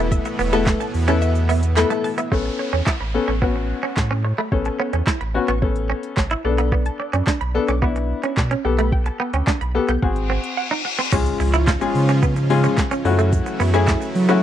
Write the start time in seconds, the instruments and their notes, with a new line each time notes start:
Already playing: sub bass E1, supersaw synth A2 B2 E3 B3 E4, grand piano A3 B3 E4 A4
0.12 synth arpeggio sound E5, kick, shaker
0.25 synth arpeggio sound E5, muted clean electric guitar stroke, closed hi-hat, shaker
0.39 sub bass E1, clean electric guitar B3, open hi-hat, shaker
0.52 grand piano A3 B3 E4 A4, clean electric guitar B3, synth arpeggio sound A5, closed hi-hat, shaker
0.66 clean electric guitar A3, kick, snare, clap, shaker
0.80 synth arpeggio sound A5, muted clean electric guitar stroke, closed hi-hat, shaker
0.94 sub bass E2, open hi-hat, shaker
1.08 grand piano A3 B3 E4 A4, clean electric guitar C#4, synth arpeggio sound A5, closed hi-hat, shaker
1.22 synth arpeggio sound E5, shaker
1.35 closed hi-hat, shaker
1.49 clean electric guitar B3, synth arpeggio sound E5, open hi-hat, shaker
1.63 closed hi-hat, shaker
1.77 grand piano A3 B3 E4 A4, synth arpeggio sound B5, snare, clap, shaker
1.90 clean electric guitar A3, synth arpeggio sound A5, closed hi-hat, shaker
2.04 synth arpeggio sound A5, muted clean electric guitar stroke, open hi-hat, shaker
2.18 clean electric guitar B3, synth arpeggio sound E5, closed hi-hat, shaker
2.32 sub bass A1, clean electric guitar A3, grand piano B3 C#4 A4, synth arpeggio sound C#5, kick, downlifter
2.46 synth arpeggio sound A5
2.59 synth arpeggio sound C#5, muted clean electric guitar stroke
2.73 sub bass E2, clean electric guitar C#4, synth arpeggio sound C#5
2.87 clean electric guitar E4, kick, snare, clap
3.00 sub bass A1, synth arpeggio sound B5, muted clean electric guitar stroke
3.14 grand piano B3 C#4 A4
3.28 sub bass A1, clean electric guitar C#4, synth arpeggio sound C#6
3.42 grand piano B3 C#4 F#4, clean electric guitar B3, synth arpeggio sound C#5, kick
3.56 muted clean electric guitar stroke
3.83 clean electric guitar C#4
3.97 sub bass A2, synth arpeggio sound C#5, kick, snare, clap
4.11 clean electric guitar C#4
4.24 synth arpeggio sound C#5, muted clean electric guitar stroke
4.38 clean electric guitar A3, synth arpeggio sound B5
4.52 sub bass A1, grand piano B3 C#4 A4, synth arpeggio sound C#5, kick
4.65 synth arpeggio sound A5, muted clean electric guitar stroke, closed hi-hat
4.79 clean electric guitar B3, synth arpeggio sound C#5
4.93 sub bass E2, clean electric guitar C#4, synth arpeggio sound C#5, closed hi-hat
5.07 clean electric guitar E4, kick, snare, clap
5.21 sub bass A1, synth arpeggio sound B5, muted clean electric guitar stroke, closed hi-hat
5.34 grand piano B3 C#4 F#4
5.48 sub bass A1, clean electric guitar B3, synth arpeggio sound C#6, closed hi-hat
5.62 grand piano B3 C#4 A4, synth arpeggio sound C#5, kick
5.76 closed hi-hat
5.90 clean electric guitar C#4
6.03 closed hi-hat
6.17 sub bass A1, synth arpeggio sound C#5, kick, snare, clap
6.31 clean electric guitar E4, closed hi-hat
6.45 sub bass B1, grand piano B3 D4 A4, synth arpeggio sound D5, muted clean electric guitar stroke
6.58 clean electric guitar B3, synth arpeggio sound B5, closed hi-hat
6.72 clean electric guitar B3, synth arpeggio sound D5, kick
6.86 synth arpeggio sound A5, closed hi-hat
7.00 synth arpeggio sound D5, muted clean electric guitar stroke
7.13 sub bass F#2, clean electric guitar C#4, synth arpeggio sound D5, closed hi-hat
7.27 clean electric guitar D4, kick, snare, clap
7.41 sub bass B1, synth arpeggio sound B5, muted clean electric guitar stroke, closed hi-hat
7.54 grand piano B3 D4 A4
7.68 sub bass B1, clean electric guitar C#4, synth arpeggio sound D6, closed hi-hat
7.82 grand piano B3 D4 E4, clean electric guitar B3, synth arpeggio sound D5, kick
7.96 muted clean electric guitar stroke, closed hi-hat
8.23 clean electric guitar C#4, closed hi-hat
8.37 sub bass B2, synth arpeggio sound D5, kick, snare, clap
8.51 clean electric guitar C#4, closed hi-hat
8.65 sub bass B1, grand piano B3 G4 A4, synth arpeggio sound G5, muted clean electric guitar stroke
8.79 clean electric guitar A3, synth arpeggio sound B5, closed hi-hat
8.92 synth arpeggio sound G5, kick
9.06 synth arpeggio sound A5, muted clean electric guitar stroke, closed hi-hat
9.20 clean electric guitar B3, synth arpeggio sound G5
9.33 sub bass D2, clean electric guitar C#4, synth arpeggio sound G5, closed hi-hat
9.47 clean electric guitar D4, kick, snare, clap
9.61 sub bass B1, synth arpeggio sound B5, muted clean electric guitar stroke, closed hi-hat
9.75 grand piano B3 G4 A4
9.88 sub bass B1, clean electric guitar B3, synth arpeggio sound G6, closed hi-hat
10.02 sub bass G#1, grand piano C4 F#4 G#4, synth arpeggio sound F#5, kick, reverse cymbal
10.16 closed hi-hat
10.30 clean electric guitar C4
10.44 closed hi-hat
10.57 synth arpeggio sound F#5
10.71 clean electric guitar D#4
10.85 synth arpeggio sound F#5, muted clean electric guitar stroke
10.99 clean electric guitar C4, synth arpeggio sound C6
11.12 sub bass C#2, supersaw synth G#2 C#3 F3 C#4 F4, grand piano G#3 C#4 F4 G#4, clean electric guitar C#4, kick, crash, impact, shaker
11.26 closed hi-hat, shaker
11.40 sub bass C#2, muted clean electric guitar stroke, open hi-hat, shaker
11.54 clean electric guitar E4, closed hi-hat, shaker
11.67 clean electric guitar F4, kick, snare, clap, shaker
11.81 grand piano G#3 C#4 F4 G#4, muted clean electric guitar stroke, closed hi-hat, shaker
11.95 sub bass C#3, open hi-hat, shaker
12.09 clean electric guitar C#4, closed hi-hat, shaker
12.22 clean electric guitar B3, kick, shaker
12.36 muted clean electric guitar stroke, closed hi-hat, shaker
12.50 grand piano G#3 C#4 F4 G#4, open hi-hat, shaker
12.64 clean electric guitar C#4, closed hi-hat, shaker
12.78 kick, snare, clap, shaker
12.91 clean electric guitar C#4, closed hi-hat, shaker
13.05 sub bass F#2, supersaw synth E3 F#3 A3 E4, grand piano A3 C#4 E4 F#4, muted clean electric guitar stroke, open hi-hat, shaker
13.19 clean electric guitar A3, closed hi-hat, shaker
13.32 kick, shaker
13.46 muted clean electric guitar stroke, closed hi-hat, shaker
13.60 sub bass F#2, clean electric guitar B3, open hi-hat, shaker
13.74 grand piano A3 C#4 E4 G#4, clean electric guitar C#4, closed hi-hat, shaker
13.87 clean electric guitar E4, kick, snare, clap, shaker
14.01 muted clean electric guitar stroke, closed hi-hat, shaker
14.15 sub bass F#3, open hi-hat, shaker
14.29 grand piano A3 C#4 E4 F#4, clean electric guitar B3, closed hi-hat, shaker